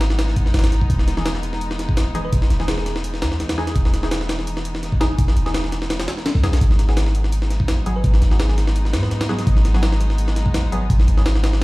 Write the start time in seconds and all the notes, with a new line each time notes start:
Already playing: G#1 F#3 G#3 B3 D#4
0.01 snare, closed hi-hat
0.10 snare
0.19 snare, closed hi-hat
0.28 snare
0.36 kick, closed hi-hat
0.46 snare
0.54 G#1, snare, closed hi-hat
0.59 snare, closed hi-hat
0.64 snare, closed hi-hat
0.72 snare, closed hi-hat
0.81 B1, kick
0.90 E1 E3, kick, closed hi-hat
0.99 snare
1.08 snare, closed hi-hat
1.17 E3 D#4 G#4, snare
1.26 snare, closed hi-hat
1.35 snare
1.43 closed hi-hat
1.53 snare
1.61 closed hi-hat
1.71 snare
1.79 snare, closed hi-hat
1.89 kick
1.97 snare, closed hi-hat
2.15 E3 D#4 G#4, closed hi-hat
2.25 B4
2.33 E1, kick, closed hi-hat
2.42 snare
2.50 E1, snare, closed hi-hat
2.60 E3 D#4 G#4, snare
2.68 G#4, snare, closed hi-hat
2.78 G#4, snare
2.86 snare, closed hi-hat
2.96 snare
3.04 closed hi-hat
3.14 snare
3.22 E2, snare, closed hi-hat
3.32 snare
3.40 snare, closed hi-hat
3.49 snare, closed hi-hat
3.58 E3 D#4 G#4, snare
3.67 snare, closed hi-hat
3.76 E1, kick, closed hi-hat
3.85 snare
3.94 snare, closed hi-hat
4.03 E3 D#4 G#4, snare
4.11 snare, closed hi-hat
4.21 snare
4.29 snare, closed hi-hat
4.39 snare
4.47 closed hi-hat
4.57 snare
4.65 closed hi-hat
4.75 snare
4.83 snare, closed hi-hat
4.92 kick
5.01 E3 D#4 G#4, snare, closed hi-hat
5.18 E1, kick, closed hi-hat
5.28 snare
5.36 E1, closed hi-hat
5.46 E3 D#4 G#4, snare
5.54 snare, closed hi-hat
5.64 snare
5.72 snare, closed hi-hat
5.82 snare
5.90 snare, closed hi-hat
6.00 snare, closed hi-hat
6.08 snare, closed hi-hat
6.17 snare
6.26 snare, closed hi-hat
6.35 B1, snare
6.43 B1 F#3 B3 G#4, snare, closed hi-hat
6.53 snare, closed hi-hat
6.61 G#1 F#3 G#3 B3 D#4, kick, closed hi-hat
6.71 snare
6.79 snare, closed hi-hat
6.89 F#3 B3 G#4, snare
6.97 snare, closed hi-hat
7.06 snare
7.15 closed hi-hat
7.24 snare
7.32 closed hi-hat
7.42 snare
7.50 snare, closed hi-hat
7.60 kick
7.68 snare, closed hi-hat
7.86 F#3 B3 G#4, closed hi-hat
7.96 B4
8.04 G#1, kick, closed hi-hat
8.14 snare
8.22 G#1, snare, closed hi-hat
8.31 F#3 B3 G#4, snare
8.40 G#4, snare, closed hi-hat
8.49 G#4, snare
8.58 snare, closed hi-hat
8.67 snare
8.76 closed hi-hat
8.85 snare
8.93 G#2, snare, closed hi-hat
9.03 B4, snare
9.11 B4, snare, closed hi-hat
9.21 snare, closed hi-hat
9.29 F#3 B3 G#4, snare
9.39 snare, closed hi-hat
9.47 G#1, kick, closed hi-hat
9.57 snare
9.65 snare, closed hi-hat
9.74 F#3 B3 G#4, snare
9.83 snare, closed hi-hat
9.92 snare
10.01 closed hi-hat
10.10 snare
10.18 closed hi-hat
10.28 snare
10.36 snare, closed hi-hat
10.46 kick
10.54 snare, closed hi-hat
10.72 F#3 B3 G#4, closed hi-hat
10.90 G#1, kick, closed hi-hat
11.00 snare
11.08 G#1, closed hi-hat
11.17 F#3 B3 G#4, snare
11.26 snare, closed hi-hat
11.35 snare
11.44 snare, closed hi-hat
11.53 snare